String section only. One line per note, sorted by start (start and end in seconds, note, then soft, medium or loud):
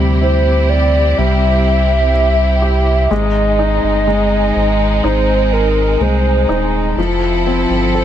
0.00 3.08 C3 medium
0.00 3.07 C4 medium
0.00 3.07 E4 medium
0.00 3.08 G4 medium
3.10 6.94 G#3 medium
3.10 6.94 C4 medium
3.10 6.94 D#4 medium
6.99 8.04 F3 medium
6.99 8.04 C4 medium
6.99 8.04 E4 medium
6.99 8.04 A4 medium